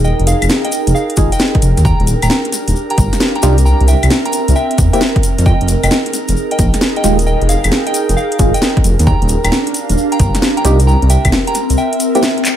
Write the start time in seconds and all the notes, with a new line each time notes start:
Already playing: D#1 D#4 G#4 A#4 G5
0.04 D#5 G5, shaker
0.19 F1, closed hi-hat
0.27 G#4 F5, closed hi-hat, shaker
0.42 F1, closed hi-hat, claves, shaker
0.49 snare, shaker
0.64 D#5 G5, closed hi-hat
0.72 closed hi-hat, shaker
0.87 F1, closed hi-hat, shaker
0.95 G#4 F5, shaker
1.10 closed hi-hat
1.17 G#1 G#3 D#4 F4 G#4, kick, closed hi-hat, shaker
1.32 D#5 G5, closed hi-hat, shaker
1.39 snare, shaker
1.55 kick, closed hi-hat
1.62 F1, closed hi-hat, shaker
1.77 D#2, snare, closed hi-hat, shaker
1.85 D4 G5 A#5, kick, shaker
2.00 D#1 G4, closed hi-hat
2.07 closed hi-hat, shaker
2.22 D#1 G5 A#5, closed hi-hat, claves, shaker
2.30 snare, shaker
2.45 closed hi-hat
2.52 snare, closed hi-hat, shaker
2.68 D#1 F5, closed hi-hat, shaker
2.76 shaker
2.90 G5 A#5, closed hi-hat
2.98 G1, kick, closed hi-hat, shaker
3.13 snare, closed hi-hat, shaker
3.20 snare, shaker
3.35 G5 A#5, closed hi-hat
3.42 C2 D4 D#4 F4 G4, snare, closed hi-hat, shaker
3.58 closed hi-hat, shaker
3.65 C4 G5 A#5, shaker
3.81 C2, closed hi-hat
3.88 E5 G5, closed hi-hat, shaker
4.03 C2 E5, closed hi-hat, claves, shaker
4.10 snare, shaker
4.25 G5 A#5, closed hi-hat
4.33 closed hi-hat, shaker
4.48 C2 A#4, closed hi-hat, shaker
4.55 E5 G5, shaker
4.71 closed hi-hat
4.78 E2, kick, closed hi-hat, shaker
4.93 A#3 C4 E4 G4 E5 G5, closed hi-hat, shaker
5.01 snare, shaker
5.16 kick, closed hi-hat
5.23 closed hi-hat, shaker
5.38 F2, snare, closed hi-hat, shaker
5.46 D#4 D#5 G5, kick, shaker
5.61 F1 G#4, closed hi-hat
5.68 closed hi-hat, shaker
5.83 F1 D#5 G5, closed hi-hat, claves, shaker
5.91 snare, shaker
6.06 closed hi-hat
6.13 snare, closed hi-hat, shaker
6.28 F1, closed hi-hat, shaker
6.37 shaker
6.51 D#5 G5, closed hi-hat
6.59 A#1, kick, closed hi-hat, shaker
6.74 snare, closed hi-hat, shaker
6.81 snare, shaker
6.96 D#5 G5, closed hi-hat
7.04 D#1 G#3 D#4 F4 G4 G5, snare, closed hi-hat, shaker
7.19 closed hi-hat, shaker
7.26 D#5 G5, shaker
7.42 F1, closed hi-hat
7.49 G#4 F5, closed hi-hat, shaker
7.64 F1, closed hi-hat, claves, shaker
7.72 snare, shaker
7.87 D#5 G5, closed hi-hat
7.94 closed hi-hat, shaker
8.09 F1, closed hi-hat, shaker
8.17 G#4 F5, shaker
8.32 closed hi-hat
8.39 G#1 G#3 D#4 F4 G#4, kick, closed hi-hat, shaker
8.54 D#5 G5, closed hi-hat, shaker
8.62 snare, shaker
8.77 kick, closed hi-hat
8.84 F1, closed hi-hat, shaker
8.99 D#2, snare, closed hi-hat, shaker
9.07 D4 G5 A#5, kick, shaker
9.22 D#1, closed hi-hat
9.29 closed hi-hat, shaker
9.44 D#1 G4 G5 A#5, closed hi-hat, claves, shaker
9.51 F5, snare, shaker
9.67 closed hi-hat
9.74 closed hi-hat, shaker
9.89 D#1, closed hi-hat, shaker
9.98 shaker
10.12 G5 A#5, closed hi-hat
10.19 G1, kick, closed hi-hat, shaker
10.35 snare, closed hi-hat, shaker
10.42 snare, shaker
10.57 G5 A#5, closed hi-hat
10.65 C2 D4 D#4 F4 G4, snare, closed hi-hat, shaker
10.79 closed hi-hat, shaker
10.87 C4 G5 A#5, shaker
11.02 C2 A#4, closed hi-hat
11.10 E5 G5, closed hi-hat, shaker
11.25 C2, kick, closed hi-hat, claves, shaker
11.32 snare, shaker
11.47 G5 A#5, closed hi-hat
11.55 E5, snare, closed hi-hat, shaker
11.70 C2, closed hi-hat, shaker
11.77 E5 G5, shaker
11.93 closed hi-hat
12.00 closed hi-hat, shaker
12.15 A#3 C4 E4 G4 E5 G5, closed hi-hat, shaker
12.23 snare, shaker
12.38 closed hi-hat
12.45 clap, closed hi-hat, shaker